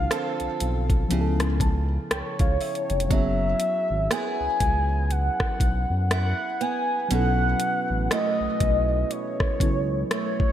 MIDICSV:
0, 0, Header, 1, 6, 480
1, 0, Start_track
1, 0, Tempo, 1000000
1, 1491, Time_signature, 4, 2, 24, 8
1, 5050, End_track
2, 0, Start_track
2, 0, Title_t, "Soft synth lead"
2, 0, Program_c, 0, 80
2, 0, Note_on_c, 0, 77, 109
2, 514, Note_off_c, 0, 77, 0
2, 1014, Note_on_c, 0, 73, 100
2, 1494, Note_on_c, 0, 76, 115
2, 1501, Note_off_c, 0, 73, 0
2, 1973, Note_on_c, 0, 80, 113
2, 1980, Note_off_c, 0, 76, 0
2, 2453, Note_on_c, 0, 78, 113
2, 2461, Note_off_c, 0, 80, 0
2, 2931, Note_off_c, 0, 78, 0
2, 2934, Note_on_c, 0, 78, 106
2, 3175, Note_on_c, 0, 80, 112
2, 3182, Note_off_c, 0, 78, 0
2, 3413, Note_off_c, 0, 80, 0
2, 3415, Note_on_c, 0, 78, 120
2, 3874, Note_off_c, 0, 78, 0
2, 3896, Note_on_c, 0, 75, 109
2, 4374, Note_on_c, 0, 73, 108
2, 4381, Note_off_c, 0, 75, 0
2, 4853, Note_off_c, 0, 73, 0
2, 4856, Note_on_c, 0, 73, 107
2, 5050, Note_off_c, 0, 73, 0
2, 5050, End_track
3, 0, Start_track
3, 0, Title_t, "FM electric piano"
3, 0, Program_c, 1, 5
3, 0, Control_c, 1, 64, 127
3, 0, Note_on_c, 1, 53, 68
3, 0, Note_on_c, 1, 60, 62
3, 0, Note_on_c, 1, 62, 62
3, 0, Note_on_c, 1, 65, 61
3, 0, Note_on_c, 1, 69, 70
3, 507, Note_off_c, 1, 53, 0
3, 510, Note_off_c, 1, 60, 0
3, 513, Note_off_c, 1, 62, 0
3, 517, Note_off_c, 1, 65, 0
3, 520, Note_on_c, 1, 53, 76
3, 527, Note_on_c, 1, 59, 71
3, 534, Note_on_c, 1, 61, 73
3, 537, Note_off_c, 1, 69, 0
3, 537, Control_c, 1, 64, 0
3, 541, Note_on_c, 1, 64, 73
3, 548, Note_on_c, 1, 67, 70
3, 576, Note_off_c, 1, 67, 0
3, 580, Note_on_c, 1, 69, 91
3, 616, Control_c, 1, 64, 127
3, 774, Note_on_c, 1, 81, 71
3, 996, Note_off_c, 1, 81, 0
3, 1013, Note_on_c, 1, 79, 72
3, 1142, Note_off_c, 1, 79, 0
3, 1155, Note_on_c, 1, 77, 74
3, 1246, Note_off_c, 1, 77, 0
3, 1254, Note_on_c, 1, 76, 71
3, 1467, Note_off_c, 1, 53, 0
3, 1470, Note_off_c, 1, 59, 0
3, 1473, Note_off_c, 1, 61, 0
3, 1476, Note_off_c, 1, 76, 0
3, 1477, Note_off_c, 1, 64, 0
3, 1480, Note_on_c, 1, 54, 65
3, 1488, Note_on_c, 1, 59, 61
3, 1495, Note_on_c, 1, 61, 61
3, 1497, Note_off_c, 1, 69, 0
3, 1498, Control_c, 1, 64, 0
3, 1502, Note_on_c, 1, 64, 60
3, 1508, Note_on_c, 1, 68, 78
3, 1569, Control_c, 1, 64, 127
3, 3387, Note_off_c, 1, 54, 0
3, 3390, Note_off_c, 1, 59, 0
3, 3394, Note_off_c, 1, 61, 0
3, 3397, Note_off_c, 1, 64, 0
3, 3401, Note_off_c, 1, 68, 0
3, 3401, Note_on_c, 1, 54, 69
3, 3408, Note_on_c, 1, 59, 63
3, 3415, Note_on_c, 1, 61, 61
3, 3417, Control_c, 1, 64, 0
3, 3422, Note_on_c, 1, 63, 50
3, 3429, Note_on_c, 1, 69, 70
3, 3453, Note_off_c, 1, 63, 0
3, 3453, Note_on_c, 1, 64, 66
3, 3515, Control_c, 1, 64, 127
3, 4587, Note_off_c, 1, 54, 0
3, 4590, Note_off_c, 1, 59, 0
3, 4594, Note_off_c, 1, 61, 0
3, 4601, Note_off_c, 1, 69, 0
3, 4607, Note_on_c, 1, 54, 51
3, 4612, Note_on_c, 1, 59, 50
3, 4613, Note_off_c, 1, 64, 0
3, 4615, Note_on_c, 1, 61, 48
3, 4618, Note_on_c, 1, 64, 46
3, 4622, Note_on_c, 1, 69, 54
3, 5050, Note_off_c, 1, 54, 0
3, 5050, Note_off_c, 1, 59, 0
3, 5050, Note_off_c, 1, 61, 0
3, 5050, Note_off_c, 1, 64, 0
3, 5050, Note_off_c, 1, 69, 0
3, 5050, End_track
4, 0, Start_track
4, 0, Title_t, "Steel-string acoustic guitar"
4, 0, Program_c, 2, 25
4, 0, Note_on_c, 2, 50, 87
4, 0, Note_on_c, 2, 65, 59
4, 52, Note_on_c, 2, 60, 63
4, 53, Note_off_c, 2, 65, 0
4, 55, Note_on_c, 2, 65, 61
4, 58, Note_on_c, 2, 69, 72
4, 531, Note_off_c, 2, 50, 0
4, 533, Note_on_c, 2, 49, 82
4, 587, Note_off_c, 2, 60, 0
4, 589, Note_off_c, 2, 65, 0
4, 590, Note_off_c, 2, 69, 0
4, 1491, Note_on_c, 2, 54, 83
4, 1547, Note_off_c, 2, 49, 0
4, 1971, Note_on_c, 2, 59, 60
4, 1974, Note_on_c, 2, 64, 65
4, 1977, Note_on_c, 2, 68, 71
4, 2930, Note_off_c, 2, 64, 0
4, 2932, Note_on_c, 2, 64, 65
4, 3169, Note_off_c, 2, 59, 0
4, 3171, Note_on_c, 2, 59, 58
4, 3411, Note_off_c, 2, 54, 0
4, 3411, Note_on_c, 2, 47, 87
4, 3470, Note_off_c, 2, 68, 0
4, 3892, Note_on_c, 2, 52, 65
4, 3893, Note_off_c, 2, 59, 0
4, 3894, Note_on_c, 2, 57, 67
4, 3896, Note_off_c, 2, 64, 0
4, 3898, Note_on_c, 2, 61, 71
4, 4850, Note_off_c, 2, 57, 0
4, 4852, Note_on_c, 2, 57, 66
4, 5050, Note_off_c, 2, 47, 0
4, 5050, Note_off_c, 2, 52, 0
4, 5050, Note_off_c, 2, 57, 0
4, 5050, Note_off_c, 2, 61, 0
4, 5050, End_track
5, 0, Start_track
5, 0, Title_t, "Analog synth bass"
5, 0, Program_c, 3, 38
5, 195, Note_on_c, 3, 35, 50
5, 234, Note_off_c, 3, 35, 0
5, 294, Note_on_c, 3, 35, 89
5, 503, Note_off_c, 3, 35, 0
5, 533, Note_on_c, 3, 37, 99
5, 952, Note_off_c, 3, 37, 0
5, 1014, Note_on_c, 3, 37, 45
5, 1069, Note_off_c, 3, 37, 0
5, 1152, Note_on_c, 3, 37, 80
5, 1239, Note_off_c, 3, 37, 0
5, 1394, Note_on_c, 3, 29, 90
5, 1480, Note_off_c, 3, 29, 0
5, 1492, Note_on_c, 3, 30, 120
5, 1701, Note_off_c, 3, 30, 0
5, 1874, Note_on_c, 3, 32, 99
5, 1961, Note_off_c, 3, 32, 0
5, 2114, Note_on_c, 3, 37, 49
5, 2153, Note_off_c, 3, 37, 0
5, 2212, Note_on_c, 3, 37, 100
5, 2543, Note_off_c, 3, 37, 0
5, 2690, Note_on_c, 3, 35, 88
5, 2812, Note_off_c, 3, 35, 0
5, 2833, Note_on_c, 3, 42, 106
5, 3041, Note_off_c, 3, 42, 0
5, 3414, Note_on_c, 3, 35, 117
5, 3623, Note_off_c, 3, 35, 0
5, 3793, Note_on_c, 3, 33, 91
5, 3880, Note_off_c, 3, 33, 0
5, 4033, Note_on_c, 3, 35, 50
5, 4073, Note_off_c, 3, 35, 0
5, 4132, Note_on_c, 3, 35, 92
5, 4342, Note_off_c, 3, 35, 0
5, 4515, Note_on_c, 3, 37, 46
5, 4554, Note_off_c, 3, 37, 0
5, 4611, Note_on_c, 3, 37, 91
5, 4821, Note_off_c, 3, 37, 0
5, 5050, End_track
6, 0, Start_track
6, 0, Title_t, "Drums"
6, 52, Note_on_c, 9, 37, 106
6, 55, Note_on_c, 9, 42, 86
6, 100, Note_off_c, 9, 37, 0
6, 103, Note_off_c, 9, 42, 0
6, 191, Note_on_c, 9, 42, 47
6, 239, Note_off_c, 9, 42, 0
6, 290, Note_on_c, 9, 42, 73
6, 338, Note_off_c, 9, 42, 0
6, 430, Note_on_c, 9, 36, 102
6, 431, Note_on_c, 9, 42, 50
6, 478, Note_off_c, 9, 36, 0
6, 479, Note_off_c, 9, 42, 0
6, 531, Note_on_c, 9, 42, 69
6, 579, Note_off_c, 9, 42, 0
6, 672, Note_on_c, 9, 37, 91
6, 672, Note_on_c, 9, 42, 54
6, 720, Note_off_c, 9, 37, 0
6, 720, Note_off_c, 9, 42, 0
6, 769, Note_on_c, 9, 36, 87
6, 771, Note_on_c, 9, 42, 61
6, 817, Note_off_c, 9, 36, 0
6, 819, Note_off_c, 9, 42, 0
6, 1012, Note_on_c, 9, 37, 110
6, 1013, Note_on_c, 9, 42, 69
6, 1060, Note_off_c, 9, 37, 0
6, 1061, Note_off_c, 9, 42, 0
6, 1149, Note_on_c, 9, 42, 50
6, 1151, Note_on_c, 9, 36, 105
6, 1197, Note_off_c, 9, 42, 0
6, 1199, Note_off_c, 9, 36, 0
6, 1251, Note_on_c, 9, 42, 36
6, 1253, Note_on_c, 9, 46, 63
6, 1299, Note_off_c, 9, 42, 0
6, 1301, Note_off_c, 9, 46, 0
6, 1321, Note_on_c, 9, 42, 43
6, 1369, Note_off_c, 9, 42, 0
6, 1391, Note_on_c, 9, 42, 58
6, 1439, Note_off_c, 9, 42, 0
6, 1440, Note_on_c, 9, 42, 68
6, 1488, Note_off_c, 9, 42, 0
6, 1491, Note_on_c, 9, 36, 118
6, 1491, Note_on_c, 9, 42, 74
6, 1539, Note_off_c, 9, 36, 0
6, 1539, Note_off_c, 9, 42, 0
6, 1726, Note_on_c, 9, 42, 73
6, 1774, Note_off_c, 9, 42, 0
6, 1971, Note_on_c, 9, 37, 105
6, 1974, Note_on_c, 9, 42, 81
6, 2019, Note_off_c, 9, 37, 0
6, 2022, Note_off_c, 9, 42, 0
6, 2210, Note_on_c, 9, 42, 68
6, 2211, Note_on_c, 9, 36, 89
6, 2258, Note_off_c, 9, 42, 0
6, 2259, Note_off_c, 9, 36, 0
6, 2451, Note_on_c, 9, 42, 64
6, 2499, Note_off_c, 9, 42, 0
6, 2592, Note_on_c, 9, 37, 100
6, 2593, Note_on_c, 9, 36, 92
6, 2640, Note_off_c, 9, 37, 0
6, 2641, Note_off_c, 9, 36, 0
6, 2688, Note_on_c, 9, 36, 90
6, 2691, Note_on_c, 9, 42, 71
6, 2736, Note_off_c, 9, 36, 0
6, 2739, Note_off_c, 9, 42, 0
6, 2932, Note_on_c, 9, 37, 114
6, 2933, Note_on_c, 9, 42, 68
6, 2980, Note_off_c, 9, 37, 0
6, 2981, Note_off_c, 9, 42, 0
6, 3173, Note_on_c, 9, 42, 59
6, 3221, Note_off_c, 9, 42, 0
6, 3411, Note_on_c, 9, 42, 73
6, 3459, Note_off_c, 9, 42, 0
6, 3646, Note_on_c, 9, 42, 74
6, 3694, Note_off_c, 9, 42, 0
6, 3892, Note_on_c, 9, 37, 106
6, 3895, Note_on_c, 9, 42, 82
6, 3940, Note_off_c, 9, 37, 0
6, 3943, Note_off_c, 9, 42, 0
6, 4130, Note_on_c, 9, 42, 69
6, 4131, Note_on_c, 9, 36, 90
6, 4178, Note_off_c, 9, 42, 0
6, 4179, Note_off_c, 9, 36, 0
6, 4371, Note_on_c, 9, 42, 67
6, 4419, Note_off_c, 9, 42, 0
6, 4512, Note_on_c, 9, 37, 94
6, 4513, Note_on_c, 9, 36, 90
6, 4560, Note_off_c, 9, 37, 0
6, 4561, Note_off_c, 9, 36, 0
6, 4609, Note_on_c, 9, 36, 91
6, 4613, Note_on_c, 9, 42, 73
6, 4657, Note_off_c, 9, 36, 0
6, 4661, Note_off_c, 9, 42, 0
6, 4852, Note_on_c, 9, 37, 115
6, 4853, Note_on_c, 9, 42, 72
6, 4900, Note_off_c, 9, 37, 0
6, 4901, Note_off_c, 9, 42, 0
6, 4991, Note_on_c, 9, 36, 105
6, 5039, Note_off_c, 9, 36, 0
6, 5050, End_track
0, 0, End_of_file